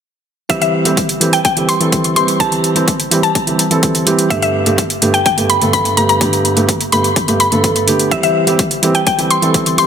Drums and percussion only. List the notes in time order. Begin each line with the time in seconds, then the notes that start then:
0.50 kick, closed hi-hat
0.62 closed hi-hat
0.85 closed hi-hat
0.97 kick, closed hi-hat
1.09 closed hi-hat
1.21 closed hi-hat
1.33 closed hi-hat
1.45 kick, closed hi-hat
1.57 closed hi-hat
1.69 closed hi-hat
1.81 closed hi-hat
1.92 kick, closed hi-hat
2.04 closed hi-hat
2.16 closed hi-hat
2.28 closed hi-hat
2.40 kick, closed hi-hat
2.52 closed hi-hat
2.64 closed hi-hat
2.76 closed hi-hat
2.88 kick, closed hi-hat
3.00 closed hi-hat
3.11 closed hi-hat
3.23 closed hi-hat
3.35 kick, closed hi-hat
3.47 closed hi-hat
3.59 closed hi-hat
3.71 closed hi-hat
3.83 kick, closed hi-hat
3.95 closed hi-hat
4.07 closed hi-hat
4.19 closed hi-hat
4.30 kick, closed hi-hat
4.42 closed hi-hat
4.66 closed hi-hat
4.78 kick, closed hi-hat
4.90 closed hi-hat
5.02 closed hi-hat
5.14 closed hi-hat
5.26 kick, closed hi-hat
5.38 closed hi-hat
5.50 closed hi-hat
5.62 closed hi-hat
5.73 kick, closed hi-hat
5.85 closed hi-hat
5.97 closed hi-hat
6.09 closed hi-hat
6.21 kick, closed hi-hat
6.33 closed hi-hat
6.45 closed hi-hat
6.57 closed hi-hat
6.69 kick, closed hi-hat
6.81 closed hi-hat
6.92 closed hi-hat
7.04 closed hi-hat
7.16 kick, closed hi-hat
7.28 closed hi-hat
7.40 closed hi-hat
7.52 closed hi-hat
7.64 kick, closed hi-hat
7.76 closed hi-hat
7.88 closed hi-hat
7.99 closed hi-hat
8.11 kick, closed hi-hat
8.23 closed hi-hat
8.47 closed hi-hat
8.59 kick, closed hi-hat
8.71 closed hi-hat
8.83 closed hi-hat
8.95 closed hi-hat
9.07 kick, closed hi-hat
9.19 closed hi-hat
9.31 closed hi-hat
9.42 closed hi-hat
9.54 kick, closed hi-hat
9.66 closed hi-hat
9.78 closed hi-hat